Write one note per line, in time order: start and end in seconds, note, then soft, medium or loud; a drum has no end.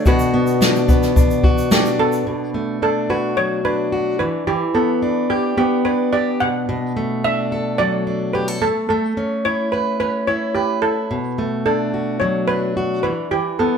0.00 0.12 A3 soft
0.00 0.60 D4 medium
0.06 2.26 B2 medium
0.06 1.44 F#4 medium
0.06 0.58 B4 medium
0.06 kick loud
0.06 shaker medium
0.19 shaker medium
0.34 0.88 B3 medium
0.47 shaker soft
0.61 1.16 D4 medium
0.61 snare loud
0.61 shaker medium
0.76 shaker soft
0.88 1.99 B3 medium
0.88 kick medium
0.88 shaker soft
1.02 snare soft
1.02 shaker soft
1.16 1.71 D4 medium
1.16 kick loud
1.16 shaker medium
1.31 shaker soft
1.44 2.32 F#4 medium
1.44 kick medium
1.58 shaker medium
1.71 2.82 D4 medium
1.71 2.00 G4 medium
1.71 snare medium
1.71 shaker medium
1.85 shaker soft
1.99 2.54 B3 medium
1.99 2.78 A4 medium
2.12 shaker medium
2.27 4.25 B2 medium
2.54 4.25 A3 medium
2.82 3.64 D4 medium
2.82 3.11 A4 medium
3.10 3.91 F#4 medium
3.10 3.22 B4 medium
3.37 4.20 F#3 medium
3.37 3.65 C#5 medium
3.65 4.50 D4 soft
3.65 4.18 B4 medium
3.92 4.25 F#4 medium
4.19 4.46 E3 medium
4.19 4.45 B4 medium
4.47 6.46 E3 medium
4.47 4.76 G4 medium
4.75 5.57 B3 medium
4.75 5.26 A4 medium
5.02 5.85 D4 medium
5.30 5.57 G4 medium
5.30 6.12 G4 medium
5.57 6.96 B3 medium
5.57 5.86 G4 medium
5.85 7.24 D4 soft
5.85 6.14 B4 medium
6.13 6.46 G4 medium
6.13 6.41 D5 medium
6.40 6.68 B2 medium
6.40 7.26 F#5 medium
6.69 8.68 B2 medium
6.97 8.62 A3 medium
7.24 8.06 D4 medium
7.24 7.81 E5 medium
7.52 8.34 A4 medium
7.78 8.61 F#3 medium
7.78 8.36 D5 loud
8.07 8.68 D4 soft
8.33 8.48 G4 medium
8.33 8.62 B4 medium
8.48 8.67 A4 soft
8.62 8.90 A3 medium
8.62 8.88 A4 medium
8.89 11.11 A3 medium
8.89 9.46 A4 medium
9.17 9.99 C#4 medium
9.45 10.27 E4 medium
9.45 9.73 C#5 medium
9.72 9.99 B4 medium
9.72 10.55 B4 medium
10.00 11.16 C#4 medium
10.00 10.29 B4 medium
10.27 10.82 E4 medium
10.27 10.53 C#5 medium
10.55 10.83 G4 medium
10.55 11.41 B4 medium
10.82 11.16 E4 soft
10.82 11.64 A4 medium
11.11 13.10 B2 medium
11.38 13.10 A3 medium
11.66 12.49 D4 soft
11.66 12.23 A4 medium
11.94 12.76 F#4 medium
12.20 13.04 F#3 medium
12.20 12.46 C#5 medium
12.48 13.35 D4 medium
12.48 13.02 B4 medium
12.77 13.10 F#4 medium
13.03 13.30 E3 medium
13.03 13.32 B4 medium
13.31 13.78 E3 medium
13.31 13.60 G4 medium
13.59 13.78 B3 medium
13.59 13.78 A4 medium